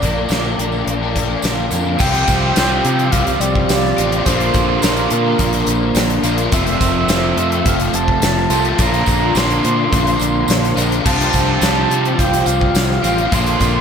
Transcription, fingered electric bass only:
0.03 A#1
0.30 A#1
0.58 A#1
0.87 A#1
1.44 A#1
1.71 F2
2.00 C2
2.28 C2
2.57 C2
2.85 C3
3.13 C2
3.40 C2
3.70 C2
3.98 A1
4.27 A#1
4.55 A#1
4.84 A#1
5.11 A#2
5.40 A#1
5.67 A#1
5.95 A#1
6.23 A#1
6.52 F1
6.81 F1
7.08 F1
7.37 F2
7.66 F1
7.94 F1
8.23 F1
8.50 C2
8.79 A#1
9.08 A#1
9.35 A#1
9.65 A#2
9.93 A#1
10.20 A#1
10.49 A#1
10.77 A#1
11.06 C2
11.34 C2
11.62 C2
11.90 C3
12.19 C2
12.46 C2
12.75 C2
13.04 A1
13.33 A#1
13.61 A#1

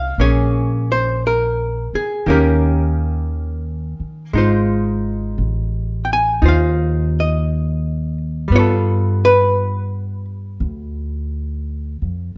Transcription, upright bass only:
Already playing: C2
0.18 A#1
1.93 muted upright bass stroke
2.26 D#2
4.00 muted upright bass stroke
4.33 G#1
5.38 A1
6.42 D#2
8.50 G2
10.60 D2
12.02 F2

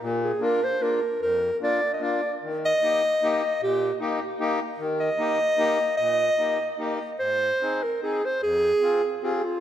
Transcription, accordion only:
0.02 A#2
0.40 A#3 D4 F4
0.80 A#3 D4 F4
1.21 F2
1.61 A#3 D4 F4
2.00 A#3 D4 F4
2.43 D#3
2.82 A#3 D#4 G4
3.22 A#3 D#4 G4
3.61 A#2
4.00 A#3 D#4 G4
4.39 A#3 D#4 G4
4.79 D#3
5.18 A#3 D#4 G4
5.57 A#3 D#4 G4
5.99 A#2
6.37 A#3 D#4 G4
6.78 A#3 D#4 G4
7.20 G#2
7.62 C4 D#4 G#4
8.02 C4 D#4 G#4
8.42 F2
8.81 C4 F4 G#4
9.23 C4 F4 G#4

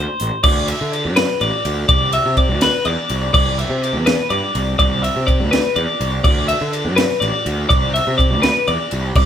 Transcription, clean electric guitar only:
Already playing: C5
0.44 D5
0.69 E5
0.93 D5
1.16 B4
1.41 D5
1.89 D5
2.13 E5
2.38 D5
2.62 B4
2.85 D5
3.34 D5
3.58 E5
3.82 D5
4.06 B4
4.30 D5
4.79 D5
5.02 E5
5.27 D5
5.51 B4
5.76 D5
6.24 D5
6.48 E5
6.72 D5
6.96 B4
7.20 D5
7.69 D5
7.94 E5
8.18 D5
8.42 B4
8.68 D5
9.16 D5

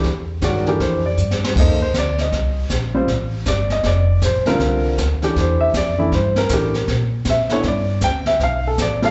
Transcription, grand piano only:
0.42 D#3 G#3 C#4 F#4 D5
0.67 E3 A3 D4 G4 A#4
0.82 C5
1.06 D5
1.57 A#3 D#4 A4 C5 D#5
1.82 C5
1.98 D5
2.21 D#5
2.95 G3 C4 F4 C5
3.48 D5
3.72 D#5
3.86 D5
4.26 C5
4.47 D3 G3 C4 F4 A#4
5.23 E3 A3 D4 G4
5.40 C5
5.61 E5
5.77 D5
5.98 E3 A3 D4 E4
6.15 C5
6.38 A#4
6.51 E3 A3 D4 G4
7.30 E5
7.51 A3 B3 D4 E4 C#5
7.62 C#5
7.67 D5
8.04 G5
8.27 E5
8.43 F5
8.67 A4
8.82 D5
9.02 G3 C4 F4 A4 F5

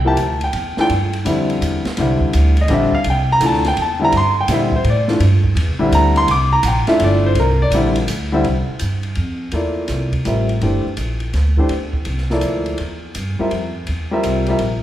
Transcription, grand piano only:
0.05 F3 A#3 E4 G4 A5
0.44 G5
0.78 E3 A3 D4 F4 G5
1.25 D3 G3 C4 E4
1.98 D3 G3 C4 E4
2.61 D#5
2.68 D3 G3 C4 D4
2.73 E5
2.95 F5
3.10 G5
3.32 A#5
3.40 E3 A3 D4 F4
3.46 A5
3.68 G5
3.82 A5
3.99 D3 G3 C4 E4
4.05 A#5
4.17 C6
4.41 G5
4.49 D3 G3 C4 E4
4.54 E5
4.76 C5
4.90 D5
5.09 E3 A3 D4 F4
5.79 D3 G3 C4 E4
5.95 A#5
6.17 C6
6.31 D6
6.53 A#5
6.63 F#5
6.68 G5
6.88 A3 D4 E4 F4 E5
7.04 D5
7.26 C5
7.40 A#4
7.62 D5
7.74 D3 G3 C4 E4
8.32 D3 G3 C4 E4
9.53 A#3 E4 F4 A4 D5
10.25 G3 C4 F4 A#4 E5
10.62 E3 A3 D4 G4 C5
11.57 E3 A3 D4 G4 C5
12.31 F3 A#3 E4 A4 D5
13.39 G3 C4 F4 A#4 E5
14.11 G3 C4 F4 A#4 E5
14.48 G3 C4 F4 A#4 E5

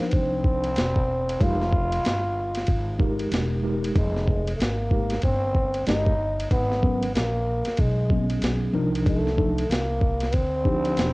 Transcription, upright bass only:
0.01 muted upright bass stroke
0.13 C2
0.77 E1
1.41 F1
2.04 G1
2.68 G#1
3.32 E1
3.96 F1
4.60 G#1
5.23 G1
5.88 G1
6.51 G#1
7.15 A#1
7.79 B1
8.42 B1
8.73 C2
9.70 C2
10.34 D2
10.97 E1

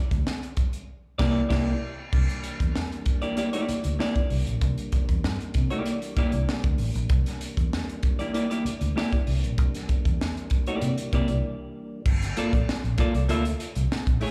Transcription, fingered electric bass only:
0.11 D2
1.19 C2
1.50 C2
2.13 C2
2.60 E2
3.69 muted fingered electric bass stroke
3.85 D2
4.31 C2
4.47 A#1
4.61 C2
5.08 E2
5.24 G2
5.54 C3
6.17 muted fingered electric bass stroke
6.34 C2
6.64 D2
6.78 A1
6.95 A#1
7.10 C2
7.57 E2
8.65 muted fingered electric bass stroke
8.81 D2
9.27 C2
9.44 A#1
9.58 C2
10.06 E2
10.82 C3
11.13 C3
11.29 C2
12.06 G1
12.53 A#1
12.84 A#1
13.15 C2
13.30 D2
13.76 C2
14.07 A#1

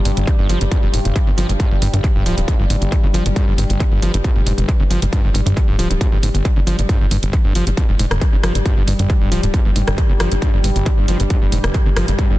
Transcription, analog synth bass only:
0.05 G1
0.17 G1
0.39 G1
0.50 G1
0.61 G1
0.83 F1
0.94 F1
1.05 F1
1.27 G1
1.38 G1
1.49 G1
1.71 G1
1.82 G1
1.93 G2
2.16 D1
2.26 D1
2.37 D1
2.60 G1
2.70 G1
2.82 G1
3.04 G1
3.14 G1
3.26 G1
3.48 G1
3.58 G1
3.70 G1
3.92 G1
4.02 G1
4.14 G1
4.36 F1
4.46 F1
4.58 F1
4.80 G1
4.91 G1
5.02 G1
5.24 G1
5.35 G1
5.46 G2
5.69 D1
5.79 D1
5.90 D1
6.12 G1
6.23 G1
6.35 G1
6.57 G1
6.67 G1
6.79 G1
7.01 G1
7.11 G1
7.23 G1
7.45 G1
7.55 G1
7.67 G1
7.89 F1
7.99 F1
8.11 F1
8.33 G1
8.43 G1
8.55 G1
8.77 G1
8.88 G1
8.99 G2
9.21 D1
9.32 D1
9.43 D1
9.65 G1
9.76 G1
9.88 G1
10.10 G1
10.20 G1
10.32 G1
10.54 G1
10.64 G1
10.76 G1
10.98 G1
11.08 G1
11.20 G1
11.42 F1
11.52 F1
11.64 F1
11.86 G1
11.97 G1
12.08 G1
12.30 G1

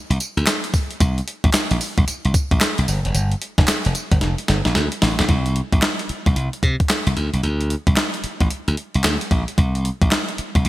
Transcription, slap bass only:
0.10 C2
0.37 D2
1.01 C2
1.44 A#1
1.54 muted slap bass stroke
1.71 A#1
1.98 C2
2.08 muted slap bass stroke
2.25 C2
2.51 A#1
2.79 C2
2.88 G1
3.05 F1
3.15 G1
3.58 F1
3.86 F1
4.12 G1
4.22 F1
4.49 G1
4.66 A#1
4.76 D2
5.03 A1
5.20 A#1
5.29 C2
5.73 A#1
6.10 muted slap bass stroke
6.26 C2
6.36 C2
6.63 C3
7.07 C2
7.16 D2
7.33 C2
7.43 D2
7.87 C2
8.24 muted slap bass stroke
8.41 A1
8.68 D2
8.95 C2
9.04 D2
9.31 A#1
9.58 C2
10.02 A#1
10.39 muted slap bass stroke
10.55 C2
10.65 C2

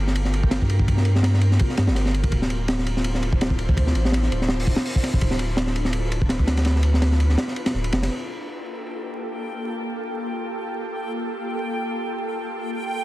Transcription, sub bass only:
Already playing: G1
0.62 G2
1.78 G2
1.88 G1
2.32 D1
3.69 D2
3.95 A1
4.31 D1
5.14 D1
6.39 D2
7.74 D1
7.92 F1

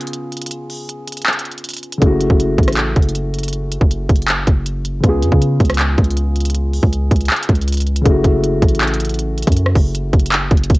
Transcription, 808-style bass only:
2.02 F#1
2.30 F#1
2.58 A1
2.96 F#1
3.81 F#1
4.09 F#1
4.47 F#1
5.04 C#2
5.23 F2
5.32 C#3
5.60 C#2
5.98 C#2
6.83 C#2
7.11 C#2
7.49 C#2
8.06 F#1
8.24 F#1
8.62 A1
9.47 F#2
9.75 F#1
10.13 F#1
10.51 F#1
10.70 F#1

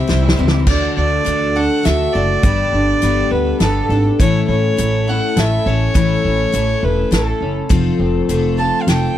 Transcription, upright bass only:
0.10 C2
0.39 C#2
0.67 D2
0.97 D2
1.26 D2
1.86 D2
2.15 F#1
2.44 G1
2.73 G1
3.03 G1
3.31 D2
3.60 G1
3.89 G#1
4.20 A1
4.48 A1
4.79 A1
5.36 A1
5.66 A1
5.95 A1
6.25 A1
6.54 A1
6.83 E1
7.11 A1
7.41 F#1
7.70 F1
7.99 F1
8.29 F1
8.87 F1

